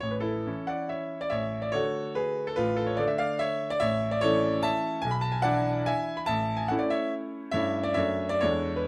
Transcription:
<<
  \new Staff \with { instrumentName = "Grand piano" } { \time 3/4 \key a \major \tempo 4 = 143 cis''16 b'16 <e' a'>4 <d'' fis''>8 <cis'' e''>8. d''16 | <cis'' e''>8. d''16 <a' cis''>4 <gis' b'>8. a'16 | <f' b'>8 a'16 cis''16 d''16 e''16 <d'' f''>8 <cis'' e''>8. d''16 | <cis'' e''>8. d''16 <a' cis''>4 <e'' a''>4 |
gis''16 b''16 a''16 gis''16 <d'' fis''>4 <e'' gis''>8. b''16 | <e'' a''>8. gis''16 fis''16 d''16 <cis'' e''>8 r4 | <cis'' e''>8. d''16 <cis'' e''>8. d''16 <a' cis''>8. b'16 | }
  \new Staff \with { instrumentName = "Grand piano" } { \time 3/4 \key a \major a,,4 <e cis' e'>2 | a,,4 <d a fis'>2 | a,,4 <d a d'>2 | a,,4 <e a cis'>2 |
b,,4 <e d' e'>2 | a,,4 <a cis' e'>2 | <g, a cis' e'>4 <fis, a d'>4 <e, gis d' e'>4 | }
>>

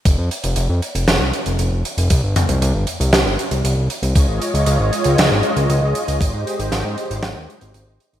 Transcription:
<<
  \new Staff \with { instrumentName = "Supersaw synth" } { \time 4/4 \key f \minor \tempo 4 = 117 << { r1 | r1 | <aes ees''>1~ | <aes ees''>1 | } \\ { r1 | r1 | <f' des''>1 | <g' c''>1 | } >> }
  \new Staff \with { instrumentName = "Analog synth bass" } { \clef bass \time 4/4 \key f \minor f,,16 f,16 r16 f,,16 f,,16 f,16 r16 f,,16 f,,16 c,16 r16 f,,16 f,,16 f,,16 r16 f,,16 | c,16 g,,16 r16 c,16 c,16 g,,16 r16 c,16 c,16 g,,16 r16 c,16 c,16 c,16 r16 c,16 | des,16 aes,,16 r16 des,16 des,16 aes,,16 r16 des,16 des,16 aes,,16 r16 des,16 des,16 des,16 r16 des,16 | aes,,16 aes,16 r16 aes,,16 aes,,16 aes,16 r16 aes,,16 aes,,16 ees,16 r16 aes,,16 aes,,16 aes,,16 r16 aes,,16 | }
  \new DrumStaff \with { instrumentName = "Drums" } \drummode { \time 4/4 <hh bd>8 hh16 hh16 hh8 hh16 hh16 <hh sn>8 hh16 hh16 hh8 hh16 hh16 | <hh bd>8 <hh toml>16 hh16 hh8 hh16 hh16 <hh sn>8 hh16 hh16 hh8 hh16 hh16 | <hh bd>8 hh16 hh16 hh8 hh16 hh16 <hh sn>8 hh16 hh16 hh8 hh16 hh16 | <hh bd>8 hh16 hh16 <hh sn>8 hh16 hh16 <hh sn>8 hh16 hh16 hh8 hh16 hh16 | }
>>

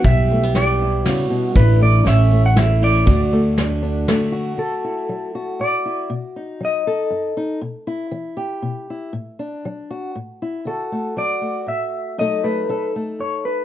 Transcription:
<<
  \new Staff \with { instrumentName = "Clean electric guitar" } { \time 3/4 \key d \major \tempo 4 = 118 e''4 d''4. r8 | b'8 d''8 e''8. fis''16 e''8 d''8~ | d''2~ d''8 r8 | a'2 d''4 |
r4 dis''4. r8 | r2. | r2. | a'4 d''4 e''4 |
dis''8 b'4 r8 cis''8 b'8 | }
  \new Staff \with { instrumentName = "French horn" } { \time 3/4 \key d \major g'2 fis'4 | e'4 cis'4 e'4 | fis'4 d'4. r8 | r2. |
r2. | r2. | r2. | r2. |
r2. | }
  \new Staff \with { instrumentName = "Tonewheel organ" } { \time 3/4 \key d \major << { <g e'>2. | <e d'>4 <e cis'>2 | <d fis'>2. | r2. |
r2. | r2. | r2. | r2. |
r2. | } \\ { b2. | a2.~ | a2. | r2. |
r2. | r2. | r2. | r2. |
r2. | } >> }
  \new Staff \with { instrumentName = "Steel-string acoustic guitar" } { \time 3/4 \key d \major << { r8 a16 b8. e'4. | r8 a4 a4 e'8 | r8 a4 d'8 a8 fis'8~ | fis'8 e'4 fis'4 e'8 |
r8 dis'4 a'4 dis'8 | r8 e'4 g'4 e'8 | r8 d'4 fis'8 r8 e'8 | fis'8 a8 fis'8 a4. |
<fis a dis' a'>8 a8 a'8 a4. | } \\ { b,4 e4 cis8 b,8 | a,4 a,4 e4 | d4 fis4 fis4 | d4 fis4 a,4 |
b,4 fis4 fis,4 | b,4 e4 b,4 | a,4 fis4 a,4 | d4 fis4 a,4 |
b,4 fis4 fis,4 | } >> }
  \new Staff \with { instrumentName = "Upright bass" } { \clef bass \time 3/4 \key d \major b,,2 r4 | a,,4 a,,2 | d,2 r4 | r2. |
r2. | r2. | r2. | r2. |
r2. | }
  \new DrumStaff \with { instrumentName = "Drums" } \drummode { \time 3/4 <bd cymr>4 <cymr sn>4 <cymr sn>4 | <bd cymr>4 <cymr sn>4 <cymr sn>8 cymr8 | <bd cymr>4 <cymr sn>4 <cymr sn>4 | r4 r4 r4 |
r4 r4 r4 | r4 r4 r4 | r4 r4 r4 | r4 r4 r4 |
r4 r4 r4 | }
>>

